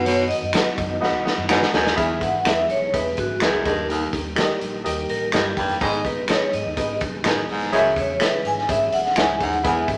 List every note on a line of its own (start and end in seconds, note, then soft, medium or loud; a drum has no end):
0.00 0.31 F#2 loud
0.00 1.97 D#3 medium
0.00 1.95 F#3 medium
0.00 1.97 B3 medium
0.00 0.40 D#4 medium
0.00 0.40 F#4 medium
0.00 1.97 F#4 medium
0.00 0.40 B4 medium
0.00 0.40 D#5 medium
0.00 0.43 F#5 medium
0.05 0.26 B2 medium
0.05 0.17 C#5 medium
0.05 closed hi-hat medium
0.28 1.69 D#5 medium
0.28 closed hi-hat medium
0.42 0.52 F#2 medium
0.53 0.74 F#3 loud
0.53 0.65 D#4 medium
0.53 0.91 D#4 medium
0.53 0.65 F#4 medium
0.53 0.92 F#4 medium
0.53 0.91 B4 medium
0.53 0.66 B4 medium
0.53 0.92 D#5 medium
0.53 0.66 D#5 medium
0.53 0.92 F#5 medium
0.53 finger snap loud
0.53 snare loud
0.53 closed hi-hat loud
0.78 0.97 F#2 medium
0.78 kick medium
0.78 closed hi-hat medium
1.01 1.12 B1 medium
1.01 1.20 D#4 medium
1.01 1.20 F#4 medium
1.01 1.20 B4 medium
1.01 1.20 D#5 medium
1.01 1.21 F#5 loud
1.01 snare medium
1.14 1.24 B1 loud
1.25 1.44 D#4 medium
1.25 1.44 F#4 medium
1.25 1.44 B4 medium
1.25 1.44 D#5 medium
1.25 1.44 F#5 medium
1.25 snare medium
1.38 1.48 F#2 loud
1.49 1.60 F#1 loud
1.49 1.69 G#2 medium
1.49 1.86 D#4 medium
1.49 1.60 D#4 medium
1.49 1.86 F#4 medium
1.49 1.61 F#4 medium
1.49 1.87 B4 medium
1.49 1.61 B4 medium
1.49 1.56 C#5 medium
1.49 1.61 D#5 medium
1.49 1.87 F#5 loud
1.49 finger snap loud
1.49 snare loud
1.55 1.90 D#5 medium
1.63 snare medium
1.73 1.93 D#2 medium
1.73 1.93 F#2 medium
1.73 1.82 D#4 medium
1.73 1.83 F#4 medium
1.73 1.83 B4 medium
1.73 1.83 D#5 medium
1.73 snare loud
1.87 snare loud
1.96 2.17 E1 loud
1.96 2.17 E2 medium
1.96 2.65 E3 medium
1.96 3.64 E3 medium
1.96 3.64 G#3 medium
1.96 3.64 B3 medium
1.96 2.34 E4 loud
1.96 2.34 G#4 loud
1.96 3.64 G#4 medium
1.96 2.34 B4 loud
1.96 2.34 E5 loud
1.96 kick loud
1.96 closed hi-hat medium
2.21 2.46 G#1 medium
2.21 2.46 F#5 medium
2.21 kick medium
2.21 closed hi-hat medium
2.45 2.65 E2 medium
2.45 2.82 E4 medium
2.45 2.57 E4 medium
2.45 2.82 G#4 medium
2.45 2.57 G#4 medium
2.45 2.82 B4 medium
2.45 2.57 B4 medium
2.45 2.52 D#5 medium
2.45 2.71 E5 medium
2.45 2.57 E5 medium
2.45 finger snap loud
2.45 snare loud
2.45 closed hi-hat medium
2.51 2.85 E5 medium
2.69 2.89 B1 medium
2.69 2.95 C#5 medium
2.69 closed hi-hat medium
2.93 3.13 E1 loud
2.93 3.30 E4 medium
2.93 3.30 G#4 medium
2.93 3.31 B4 medium
2.93 3.16 B4 medium
2.93 3.00 D#5 medium
2.93 kick medium
2.93 closed hi-hat medium
2.99 3.33 E5 medium
3.17 3.37 G#1 medium
3.17 3.43 F#4 medium
3.17 kick medium
3.17 closed hi-hat medium
3.40 3.65 C#2 medium
3.40 3.61 F#2 medium
3.40 3.65 E4 medium
3.40 3.52 E4 medium
3.40 3.65 G#4 medium
3.40 3.52 G#4 medium
3.40 3.67 G#4 medium
3.40 3.65 B4 medium
3.40 3.53 B4 medium
3.40 3.66 E5 medium
3.40 3.53 E5 medium
3.40 finger snap loud
3.40 snare loud
3.40 closed hi-hat medium
3.64 4.04 D#2 medium
3.64 3.85 G2 medium
3.64 4.33 D#3 medium
3.64 5.79 D#3 medium
3.64 5.79 G3 medium
3.64 5.79 A#3 medium
3.64 4.22 D#4 medium
3.64 4.22 G4 medium
3.64 5.79 G4 medium
3.64 4.23 A#4 medium
3.64 3.91 A#4 medium
3.64 4.23 D#5 medium
3.64 kick medium
3.64 closed hi-hat medium
3.90 4.09 D#2 medium
3.90 4.13 D#4 medium
3.90 closed hi-hat medium
4.13 4.32 D#2 medium
4.13 kick medium
4.13 closed hi-hat medium
4.36 4.57 D#3 medium
4.36 4.73 D#4 medium
4.36 4.48 D#4 medium
4.36 4.74 G4 medium
4.36 4.48 G4 medium
4.36 4.74 A#4 medium
4.36 4.49 A#4 medium
4.36 4.43 D5 medium
4.36 4.49 D#5 medium
4.36 finger snap loud
4.36 snare loud
4.36 closed hi-hat medium
4.42 4.77 D#5 medium
4.61 4.81 A#1 medium
4.61 closed hi-hat medium
4.84 5.05 D#2 loud
4.84 5.22 D#4 medium
4.84 5.22 G4 medium
4.84 5.22 A#4 medium
4.84 5.22 D#5 medium
4.84 closed hi-hat medium
5.09 5.29 A1 medium
5.09 5.32 A#4 medium
5.09 closed hi-hat medium
5.32 5.52 G1 medium
5.32 5.52 G2 medium
5.32 5.70 D#4 medium
5.32 5.44 D#4 medium
5.32 5.70 G4 medium
5.32 5.44 G4 medium
5.32 5.58 G4 medium
5.32 5.70 A#4 medium
5.32 5.44 A#4 medium
5.32 5.70 D#5 medium
5.32 5.45 D#5 loud
5.32 finger snap medium
5.32 snare loud
5.32 closed hi-hat medium
5.57 5.76 F1 medium
5.57 5.76 G2 medium
5.57 5.82 G5 loud
5.57 kick medium
5.57 closed hi-hat medium
5.69 snare soft
5.69 closed hi-hat soft
5.81 6.00 G#1 loud
5.81 6.49 G#2 medium
5.81 6.01 G#2 medium
5.81 7.71 D#3 medium
5.81 9.97 G#3 medium
5.81 7.71 B3 medium
5.81 6.18 D#4 loud
5.81 6.18 G#4 medium
5.81 7.71 G#4 medium
5.81 6.18 B4 loud
5.81 6.18 D#5 loud
5.81 6.06 D#5 loud
5.81 kick loud
5.81 closed hi-hat medium
5.93 closed hi-hat medium
6.05 6.34 B1 medium
6.05 6.28 B4 medium
6.05 kick medium
6.05 closed hi-hat medium
6.28 6.40 D#4 medium
6.28 6.66 D#4 medium
6.28 6.40 G#4 medium
6.28 6.66 G#4 medium
6.28 6.40 B4 medium
6.28 6.66 B4 medium
6.28 6.54 C#5 medium
6.28 6.40 D#5 loud
6.28 6.67 D#5 medium
6.28 finger snap loud
6.28 snare loud
6.28 closed hi-hat medium
6.53 6.63 G#2 loud
6.53 6.77 D#5 medium
6.53 closed hi-hat medium
6.65 6.75 D#2 medium
6.77 6.96 G#1 loud
6.77 7.14 D#4 medium
6.77 7.14 G#4 medium
6.77 7.14 B4 medium
6.77 7.14 D#5 medium
6.77 7.00 D#5 medium
6.77 kick medium
6.77 closed hi-hat medium
7.01 7.20 B1 medium
7.01 kick medium
7.01 closed hi-hat medium
7.24 7.44 A1 medium
7.24 7.44 F#2 medium
7.24 7.61 D#4 medium
7.24 7.36 D#4 medium
7.24 7.62 G#4 medium
7.24 7.36 G#4 medium
7.24 7.62 B4 medium
7.24 7.36 B4 medium
7.24 7.62 D#5 medium
7.24 7.36 D#5 loud
7.24 finger snap loud
7.24 snare loud
7.24 closed hi-hat medium
7.48 7.73 B1 medium
7.48 7.69 G#2 medium
7.48 open hi-hat soft
7.61 snare soft
7.61 closed hi-hat medium
7.72 7.97 C#2 loud
7.72 7.93 F#2 medium
7.72 8.41 C#3 medium
7.72 9.63 E3 medium
7.72 9.64 C#4 medium
7.72 8.10 E4 loud
7.72 8.10 G#4 loud
7.72 9.97 G#4 medium
7.72 8.10 C#5 loud
7.72 7.79 D#5 loud
7.72 closed hi-hat medium
7.78 8.13 E5 loud
7.96 8.16 E2 medium
7.96 8.23 C#5 medium
7.96 kick medium
7.96 closed hi-hat medium
8.20 8.40 C#3 medium
8.20 8.58 E4 medium
8.20 8.31 E4 medium
8.20 8.32 G#4 medium
8.20 8.58 G#4 medium
8.20 8.46 B4 medium
8.20 8.32 C#5 medium
8.20 8.58 C#5 medium
8.20 8.27 D#5 medium
8.20 8.32 E5 medium
8.20 finger snap medium
8.20 snare loud
8.20 closed hi-hat loud
8.27 8.61 E5 medium
8.44 8.64 G#1 medium
8.44 8.68 G#5 loud
8.44 closed hi-hat medium
8.58 snare soft
8.68 8.88 G#1 loud
8.68 9.06 E4 medium
8.68 9.05 G#4 medium
8.68 9.06 C#5 medium
8.68 9.06 E5 medium
8.68 8.94 E5 loud
8.68 kick loud
8.68 closed hi-hat loud
8.92 9.12 B1 medium
8.92 9.18 F#5 medium
8.92 closed hi-hat medium
9.05 snare soft
9.16 9.36 C#2 medium
9.16 9.36 G#2 medium
9.16 9.53 E4 medium
9.16 9.27 E4 medium
9.16 9.53 G#4 medium
9.16 9.28 G#4 medium
9.16 9.54 C#5 medium
9.16 9.28 C#5 medium
9.16 9.54 E5 medium
9.16 9.28 E5 medium
9.16 9.42 G#5 loud
9.16 finger snap loud
9.16 snare loud
9.16 closed hi-hat medium
9.40 9.66 D#2 medium
9.40 9.60 G#2 medium
9.40 9.66 F#5 medium
9.40 kick medium
9.40 closed hi-hat medium
9.53 closed hi-hat soft
9.63 9.84 E1 loud
9.63 9.84 E2 medium
9.63 9.97 E3 medium
9.63 9.97 B3 medium
9.63 9.97 E4 loud
9.63 9.97 G#4 medium
9.63 9.97 B4 loud
9.63 9.97 E5 loud
9.63 9.88 G#5 medium
9.63 kick loud
9.63 closed hi-hat medium
9.88 9.97 G#1 medium
9.88 kick medium
9.88 closed hi-hat medium